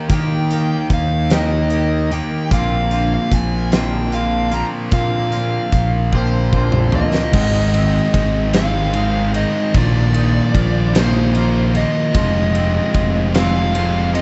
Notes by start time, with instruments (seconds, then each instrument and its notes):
Already playing: clean electric guitar G4, lead electric guitar A#5
0.09 clean electric guitar D#3 A#3 D#4 G4, distorted electric guitar D#3 A#3 D#4, fingered electric bass D#3, lead electric guitar G5, kick, closed hi-hat
0.50 clean electric guitar A#3 D#4 G4, closed hi-hat
0.90 fingered electric bass D#2, lead electric guitar F5, kick, closed hi-hat
1.30 clean electric guitar D#3 A#3 D#4 G4, lead electric guitar D#5, snare, closed hi-hat
1.70 clean electric guitar D#3 A#3 D#4 G4, closed hi-hat
2.11 distorted electric guitar D#3 A#3 D#4, clean electric guitar A#3 D#4 G4, lead electric guitar G5, closed hi-hat
2.50 fingered electric bass A#1, clean electric guitar A#2 D3 A#3 C4 F4, distorted electric guitar A#2 F3 A#3, lead electric guitar F5, kick, closed hi-hat
2.91 clean electric guitar A#3 C4 F4, closed hi-hat
3.14 lead electric guitar F5
3.32 fingered electric bass A#1, lead electric guitar G#5, kick, closed hi-hat
3.71 clean electric guitar A#2 D3 A#3 C4 F4, lead electric guitar G5, snare, closed hi-hat
4.10 clean electric guitar D3 A#3 C4 F4, lead electric guitar F5, closed hi-hat
4.51 distorted electric guitar A#2 F3 A#3, clean electric guitar A#3 C4 F4, lead electric guitar A#5, closed hi-hat
4.91 clean electric guitar A#2 D3 A#3 C4 F4, distorted electric guitar A#2 F3 A#3, fingered electric bass A#2, lead electric guitar F5, kick, closed hi-hat
5.32 clean electric guitar A#3 C4 F4, closed hi-hat
5.72 fingered electric bass A#1, kick, closed hi-hat
6.12 clean electric guitar A#2 D3 A#3 C4 F4, lead electric guitar C5, kick
6.52 clean electric guitar D3 A#3 C4 F4, kick
6.72 mid tom
6.92 distorted electric guitar A#2 F3 A#3, clean electric guitar A#3 C4 F4, lead electric guitar D#5, floor tom
7.14 snare
7.33 fingered electric bass G#1, distorted electric guitar G#2 D#3 G#3 C4 D#4, clean electric guitar G#3, kick, crash
7.72 distorted electric guitar G#3 C4 D#4, clean electric guitar C4, ride
8.14 fingered electric bass G#1, clean electric guitar D#4, kick, ride
8.53 distorted electric guitar G#2 D#3 G#3 C4 D#4, clean electric guitar C4, lead electric guitar F5, snare, ride
8.93 distorted electric guitar D#3 G#3 C4 D#4, clean electric guitar G#3, ride
9.34 distorted electric guitar G#3 C4 D#4, clean electric guitar D#4, lead electric guitar D#5, ride
9.73 fingered electric bass A#1, distorted electric guitar A#2 D#3 F3 A#3 F4, clean electric guitar A#2, lead electric guitar D5, kick, ride
10.14 distorted electric guitar F3 A#3 F4, clean electric guitar D#4, ride
10.54 fingered electric bass A#1, clean electric guitar F4, kick, ride
10.94 distorted electric guitar A#2 D#3 F3 A#3 F4, clean electric guitar D#4, lead electric guitar C5, snare, ride
11.34 distorted electric guitar D#3 F3 A#3 F4, clean electric guitar A#3, ride
11.75 distorted electric guitar F3 A#3 F4, clean electric guitar F4, lead electric guitar D#5, ride
12.14 fingered electric bass F1, clean electric guitar F3, distorted electric guitar F3 G#3 C4 F4, kick, ride
12.55 distorted electric guitar G#3 C4 F4, clean electric guitar C4, ride
12.94 fingered electric bass F1, clean electric guitar F4, kick, ride
13.34 distorted electric guitar F3 G#3 C4 F4, clean electric guitar C4, lead electric guitar F5, snare, ride
13.74 clean electric guitar F3, distorted electric guitar F3 G#3, ride
13.78 distorted electric guitar C4 F4
14.15 distorted electric guitar G#3 C4 F4, clean electric guitar F4, lead electric guitar D#5, ride